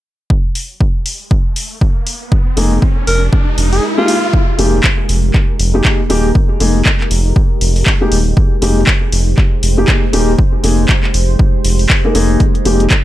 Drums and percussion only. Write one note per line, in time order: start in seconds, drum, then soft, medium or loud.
0.30 kick loud
0.55 open hi-hat loud
0.81 kick loud
1.06 open hi-hat loud
1.31 kick loud
1.56 open hi-hat loud
1.81 kick loud
2.07 open hi-hat loud
2.32 kick loud
2.57 open hi-hat loud
2.82 kick loud
3.07 open hi-hat loud
3.33 kick loud
3.58 open hi-hat loud
3.73 open hi-hat medium
4.08 open hi-hat loud
4.33 kick loud
4.59 open hi-hat loud
4.84 kick loud
4.84 clap loud
5.09 open hi-hat loud
5.34 kick loud
5.34 clap soft
5.59 open hi-hat loud
5.85 kick loud
5.85 clap loud
6.10 open hi-hat loud
6.35 kick loud
6.60 open hi-hat loud
6.85 kick loud
6.85 clap loud
7.00 clap soft
7.11 open hi-hat loud
7.36 kick loud
7.61 open hi-hat loud
7.76 open hi-hat medium
7.86 kick loud
7.86 clap loud
8.12 open hi-hat loud
8.37 kick loud
8.62 open hi-hat loud
8.87 kick loud
8.87 clap loud
9.12 open hi-hat loud
9.38 kick loud
9.38 clap soft
9.63 open hi-hat loud
9.88 kick loud
9.88 clap loud
10.13 open hi-hat loud
10.39 kick loud
10.64 open hi-hat loud
10.89 kick loud
10.89 clap loud
11.04 clap soft
11.14 open hi-hat loud
11.39 kick loud
11.65 open hi-hat loud
11.79 open hi-hat medium
11.90 kick loud
11.90 clap loud
12.15 open hi-hat loud
12.40 kick loud
12.40 closed hi-hat medium
12.55 closed hi-hat soft
12.65 open hi-hat loud
12.80 closed hi-hat medium
12.90 kick loud
12.90 clap loud
12.90 closed hi-hat medium